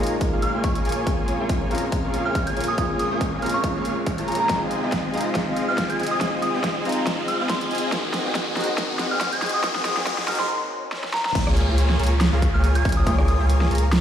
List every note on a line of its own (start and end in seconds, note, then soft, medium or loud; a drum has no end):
0.00 4.46 C#3 medium
0.00 0.82 G#3 medium
0.00 0.87 G#3 medium
0.00 0.13 A#3 loud
0.00 0.88 A#3 medium
0.00 4.46 A#3 medium
0.00 0.88 D#4 medium
0.00 0.02 F4 loud
0.00 0.13 F4 medium
0.00 7.88 F4 medium
0.00 0.85 F4 loud
0.00 0.13 G#4 medium
0.00 0.13 C#5 medium
0.00 0.13 A#5 loud
0.00 closed hi-hat medium
0.00 riser medium
0.07 closed hi-hat medium
0.21 kick medium
0.21 closed hi-hat medium
0.33 0.51 A#3 medium
0.33 0.51 F4 medium
0.33 0.51 G#4 medium
0.33 0.51 C#5 medium
0.33 0.51 F5 loud
0.42 0.62 F6 medium
0.42 closed hi-hat medium
0.54 0.83 A#3 medium
0.54 0.83 F4 medium
0.54 0.83 G#4 medium
0.54 0.83 C#5 medium
0.54 0.83 G#5 medium
0.64 0.90 C#6 medium
0.64 kick medium
0.64 closed hi-hat medium
0.75 closed hi-hat medium
0.85 10.46 G#3 medium
0.85 1.04 A#3 loud
0.85 1.04 F4 medium
0.85 1.04 G#4 medium
0.85 1.04 C#5 medium
0.85 1.04 G#5 loud
0.85 closed hi-hat soft
0.89 closed hi-hat medium
0.92 closed hi-hat medium
1.05 1.67 G#3 medium
1.05 1.37 A#3 medium
1.05 1.68 C4 medium
1.05 1.69 C#4 medium
1.05 1.37 F4 medium
1.05 1.37 G#4 medium
1.05 1.37 C#5 medium
1.05 1.37 G#5 loud
1.05 kick loud
1.05 closed hi-hat medium
1.09 1.70 F4 medium
1.28 closed hi-hat medium
1.40 1.69 A#3 medium
1.40 1.69 F4 medium
1.40 1.69 G#4 medium
1.40 1.69 C#5 medium
1.40 1.69 G#5 loud
1.49 kick loud
1.49 closed hi-hat medium
1.69 2.75 G#3 medium
1.69 1.84 A#3 loud
1.69 2.75 C4 medium
1.69 2.76 C#4 medium
1.69 1.84 F4 medium
1.69 1.84 G#4 medium
1.69 1.84 C#5 medium
1.69 1.84 A#5 loud
1.69 closed hi-hat soft
1.73 2.77 F4 loud
1.73 closed hi-hat medium
1.78 closed hi-hat medium
1.92 kick medium
1.92 closed hi-hat medium
2.04 2.22 A#3 medium
2.04 2.22 F4 medium
2.04 2.22 G#4 medium
2.04 2.22 C#5 medium
2.04 2.22 F5 loud
2.14 closed hi-hat medium
2.25 2.54 A#3 medium
2.25 2.54 F4 medium
2.25 2.54 G#4 medium
2.25 2.54 C#5 medium
2.25 2.54 G#5 medium
2.25 2.39 F6 medium
2.35 kick loud
2.35 closed hi-hat medium
2.47 2.60 G#6 medium
2.47 closed hi-hat medium
2.57 2.76 A#3 loud
2.57 2.76 F4 medium
2.57 2.76 G#4 medium
2.57 2.76 C#5 medium
2.57 2.76 G#5 loud
2.57 closed hi-hat soft
2.60 closed hi-hat medium
2.64 closed hi-hat medium
2.68 2.75 D#6 medium
2.76 3.39 G#3 medium
2.76 3.08 A#3 medium
2.76 3.40 C4 medium
2.76 3.40 C#4 medium
2.76 3.08 F4 medium
2.76 3.08 G#4 medium
2.76 3.08 C#5 medium
2.76 3.08 G#5 loud
2.76 kick loud
2.76 closed hi-hat medium
2.80 3.41 F4 medium
2.99 3.14 D#6 medium
2.99 closed hi-hat medium
3.11 3.40 A#3 loud
3.11 3.40 F4 medium
3.11 3.40 G#4 medium
3.11 3.40 C#5 medium
3.11 3.40 G#5 loud
3.21 kick medium
3.21 closed hi-hat medium
3.40 4.46 G#3 medium
3.40 3.56 A#3 loud
3.40 4.47 C4 medium
3.40 4.48 C#4 medium
3.40 3.56 F4 loud
3.40 3.56 G#4 medium
3.40 3.56 C#5 medium
3.40 3.56 A#5 loud
3.40 3.52 F6 medium
3.40 closed hi-hat soft
3.44 4.48 F4 loud
3.44 closed hi-hat medium
3.49 closed hi-hat medium
3.54 3.68 C#6 medium
3.64 kick loud
3.64 closed hi-hat medium
3.75 3.93 A#3 medium
3.75 3.93 F4 medium
3.75 3.93 G#4 medium
3.75 3.93 C#5 medium
3.75 3.93 F5 loud
3.85 closed hi-hat medium
4.06 kick loud
4.06 closed hi-hat medium
4.18 4.47 A#3 medium
4.18 4.47 F4 medium
4.18 4.47 G#4 medium
4.18 4.47 C#5 medium
4.18 4.47 A#5 medium
4.18 closed hi-hat medium
4.28 4.36 A#5 medium
4.28 closed hi-hat soft
4.32 closed hi-hat medium
4.35 closed hi-hat medium
4.40 4.46 A#5 medium
4.48 10.46 D#3 medium
4.48 5.10 G#3 medium
4.48 5.11 C4 medium
4.48 4.80 C4 loud
4.48 10.46 C4 medium
4.48 5.12 D#4 medium
4.48 4.80 F4 medium
4.48 4.80 G#4 medium
4.48 4.80 D#5 medium
4.48 4.80 G#5 loud
4.48 kick loud
4.48 snare soft
4.48 closed hi-hat medium
4.52 5.13 F4 medium
4.71 closed hi-hat medium
4.83 5.11 C4 medium
4.83 5.11 F4 medium
4.83 5.11 G#4 medium
4.83 5.11 D#5 medium
4.83 5.11 G#5 loud
4.92 kick loud
4.92 snare soft
4.92 closed hi-hat medium
5.12 6.18 G#3 medium
5.12 6.18 C4 medium
5.12 5.27 C4 loud
5.12 6.19 D#4 medium
5.12 5.27 F4 medium
5.12 6.20 F4 loud
5.12 5.27 G#4 medium
5.12 5.27 D#5 medium
5.12 5.27 A#5 loud
5.12 closed hi-hat soft
5.17 closed hi-hat medium
5.21 closed hi-hat medium
5.35 kick loud
5.35 snare medium
5.35 closed hi-hat medium
5.47 5.65 C4 medium
5.47 5.65 F4 medium
5.47 5.65 G#4 medium
5.47 5.65 D#5 medium
5.47 5.65 F5 loud
5.56 closed hi-hat medium
5.68 5.97 C4 medium
5.68 5.97 F4 medium
5.68 5.97 G#4 medium
5.68 5.97 D#5 medium
5.68 5.97 G#5 medium
5.68 5.82 F6 medium
5.78 kick loud
5.78 snare medium
5.78 closed hi-hat medium
5.90 6.03 G#6 medium
5.90 closed hi-hat medium
5.99 6.19 C4 loud
5.99 6.19 F4 medium
5.99 6.19 G#4 medium
5.99 6.19 D#5 medium
5.99 6.19 G#5 loud
5.99 closed hi-hat soft
6.03 closed hi-hat medium
6.07 closed hi-hat medium
6.11 6.17 D#6 medium
6.19 6.82 G#3 medium
6.19 6.83 C4 medium
6.19 6.51 C4 loud
6.19 6.83 D#4 medium
6.19 6.51 F4 medium
6.19 6.51 G#4 medium
6.19 6.51 D#5 medium
6.19 6.51 G#5 loud
6.19 kick loud
6.19 snare medium
6.19 closed hi-hat medium
6.23 6.84 F4 medium
6.42 6.57 D#6 medium
6.42 closed hi-hat medium
6.54 6.83 C4 medium
6.54 6.83 F4 medium
6.54 6.83 G#4 medium
6.54 6.83 D#5 medium
6.54 6.83 G#5 loud
6.64 kick loud
6.64 snare medium
6.64 closed hi-hat medium
6.83 7.89 G#3 medium
6.83 7.90 C4 medium
6.83 6.99 C4 loud
6.83 7.90 D#4 medium
6.83 6.99 F4 medium
6.83 7.91 F4 loud
6.83 6.99 G#4 medium
6.83 6.99 D#5 medium
6.83 6.99 A#5 loud
6.83 closed hi-hat soft
6.89 closed hi-hat medium
6.92 closed hi-hat medium
7.07 kick loud
7.07 snare medium
7.07 closed hi-hat medium
7.19 7.36 C4 medium
7.19 7.36 F4 medium
7.19 7.36 G#4 medium
7.19 7.36 D#5 medium
7.19 7.36 F5 loud
7.28 7.48 F6 medium
7.28 closed hi-hat medium
7.40 7.69 C4 medium
7.40 7.69 F4 medium
7.40 7.69 G#4 medium
7.40 7.69 D#5 medium
7.40 7.69 G#5 medium
7.49 7.83 C6 medium
7.49 kick loud
7.49 snare medium
7.49 closed hi-hat medium
7.61 closed hi-hat medium
7.71 7.90 C4 medium
7.71 7.90 F4 medium
7.71 7.90 G#4 medium
7.71 7.90 D#5 medium
7.71 7.90 G#5 loud
7.71 closed hi-hat soft
7.75 closed hi-hat medium
7.78 closed hi-hat medium
7.91 8.53 A#3 medium
7.91 8.54 C4 medium
7.91 8.23 C4 loud
7.91 8.55 D#4 medium
7.91 10.47 F#4 medium
7.91 8.23 F#4 medium
7.91 8.55 F#4 medium
7.91 8.23 G#4 medium
7.91 8.23 D#5 medium
7.91 8.23 G#5 loud
7.91 kick medium
7.91 snare medium
7.91 closed hi-hat medium
8.14 snare medium
8.14 closed hi-hat medium
8.26 8.54 C4 medium
8.26 8.54 F#4 medium
8.26 8.54 G#4 medium
8.26 8.54 D#5 medium
8.26 8.54 G#5 loud
8.35 kick loud
8.35 snare medium
8.35 closed hi-hat medium
8.55 9.60 A#3 medium
8.55 9.61 C4 medium
8.55 8.70 C4 loud
8.55 9.62 D#4 medium
8.55 8.70 F#4 medium
8.55 9.63 F#4 loud
8.55 8.70 G#4 medium
8.55 8.70 D#5 loud
8.55 8.70 A#5 loud
8.55 snare medium
8.55 closed hi-hat soft
8.60 closed hi-hat medium
8.64 closed hi-hat medium
8.78 kick loud
8.78 snare medium
8.78 closed hi-hat medium
8.90 9.08 C4 medium
8.90 9.08 F#4 medium
8.90 9.08 G#4 medium
8.90 9.08 D#5 medium
8.90 9.08 F#5 loud
8.99 snare medium
8.99 closed hi-hat medium
9.11 9.40 C4 medium
9.11 9.40 F#4 medium
9.11 9.40 G#4 medium
9.11 9.40 D#5 medium
9.11 9.40 G#5 medium
9.11 9.25 F6 medium
9.21 kick loud
9.21 snare medium
9.21 closed hi-hat medium
9.33 9.46 G#6 medium
9.33 closed hi-hat medium
9.42 9.61 C4 medium
9.42 9.61 F#4 medium
9.42 9.61 G#4 medium
9.42 9.61 D#5 medium
9.42 9.61 G#5 loud
9.42 snare medium
9.42 closed hi-hat soft
9.46 closed hi-hat medium
9.49 closed hi-hat medium
9.54 9.60 D#6 medium
9.62 10.25 A#3 medium
9.62 10.25 C4 medium
9.62 9.94 C4 loud
9.62 10.26 D#4 medium
9.62 9.94 F#4 medium
9.62 9.94 G#4 medium
9.62 9.94 D#5 medium
9.62 9.94 G#5 loud
9.62 kick loud
9.62 snare medium
9.62 closed hi-hat medium
9.66 10.27 F#4 medium
9.76 snare medium
9.85 10.00 D#6 medium
9.85 snare medium
9.85 closed hi-hat medium
9.97 10.26 C4 medium
9.97 10.26 F#4 medium
9.97 10.26 G#4 medium
9.97 10.26 D#5 medium
9.97 10.26 G#5 loud
9.97 snare medium
10.07 kick loud
10.07 snare loud
10.07 closed hi-hat medium
10.18 snare medium
10.26 10.49 A#3 medium
10.26 10.49 C4 medium
10.26 10.41 C4 loud
10.26 10.50 D#4 medium
10.26 10.41 F#4 medium
10.26 10.41 G#4 loud
10.26 10.41 D#5 medium
10.26 10.41 A#5 loud
10.26 10.37 F6 medium
10.26 snare loud
10.26 closed hi-hat medium
10.30 10.51 F#4 loud
10.30 closed hi-hat medium
10.35 closed hi-hat medium
10.40 10.53 C6 medium
10.40 snare medium
10.49 swell medium
10.92 snare medium
11.04 snare medium
11.14 11.21 A#5 medium
11.14 snare medium
11.25 11.32 A#5 medium
11.25 snare medium
11.35 11.66 C#2 loud
11.35 11.66 A#3 loud
11.35 11.66 F4 medium
11.35 11.66 G#4 medium
11.35 11.66 C#5 medium
11.35 11.66 G#5 loud
11.35 kick loud
11.35 closed hi-hat medium
11.35 crash loud
11.35 downlifter medium
11.47 cross-stick medium
11.57 closed hi-hat medium
11.68 11.98 C#2 loud
11.68 11.97 A#3 medium
11.68 11.97 F4 medium
11.68 11.97 G#4 medium
11.68 11.97 C#5 medium
11.68 11.97 G#5 loud
11.78 closed hi-hat medium
11.90 snare soft
11.99 12.30 C#2 loud
11.99 12.13 A#3 loud
11.99 12.13 F4 medium
11.99 12.13 G#4 medium
11.99 12.13 C#5 medium
11.99 12.13 A#5 loud
11.99 closed hi-hat soft
12.03 closed hi-hat medium
12.07 closed hi-hat medium
12.21 snare loud
12.21 closed hi-hat medium
12.33 12.52 C#2 medium
12.33 12.51 A#3 medium
12.33 12.51 F4 medium
12.33 12.51 G#4 medium
12.33 12.51 C#5 medium
12.33 12.51 F5 loud
12.42 kick medium
12.42 closed hi-hat medium
12.54 12.83 C#2 loud
12.54 12.83 A#3 medium
12.54 12.83 F4 medium
12.54 12.83 G#4 medium
12.54 12.83 C#5 medium
12.54 12.83 G#5 medium
12.54 12.68 F6 medium
12.64 closed hi-hat medium
12.75 12.89 G#6 medium
12.75 closed hi-hat medium
12.85 13.05 C#2 loud
12.85 13.04 A#3 medium
12.85 13.04 F4 medium
12.85 13.04 G#4 medium
12.85 13.04 C#5 medium
12.85 13.04 G#5 loud
12.85 kick loud
12.85 closed hi-hat medium
12.89 closed hi-hat medium
12.92 closed hi-hat medium
12.97 13.03 D#6 medium
13.07 13.37 C#2 loud
13.07 13.37 A#3 loud
13.07 13.37 F4 medium
13.07 13.37 G#4 medium
13.07 13.37 C#5 medium
13.07 13.37 G#5 loud
13.07 13.14 D#6 medium
13.07 kick loud
13.07 closed hi-hat medium
13.18 cross-stick medium
13.28 13.43 D#6 medium
13.28 closed hi-hat medium
13.40 13.69 C#2 loud
13.40 13.69 A#3 loud
13.40 13.69 F4 medium
13.40 13.69 G#4 medium
13.40 13.69 C#5 medium
13.40 13.69 G#5 loud
13.50 closed hi-hat medium
13.61 snare soft
13.71 14.01 C#2 loud
13.71 13.84 A#3 loud
13.71 13.84 F4 loud
13.71 13.84 G#4 medium
13.71 13.84 C#5 loud
13.71 13.84 A#5 loud
13.71 closed hi-hat soft
13.75 closed hi-hat medium
13.78 closed hi-hat medium
13.93 snare loud
13.93 closed hi-hat medium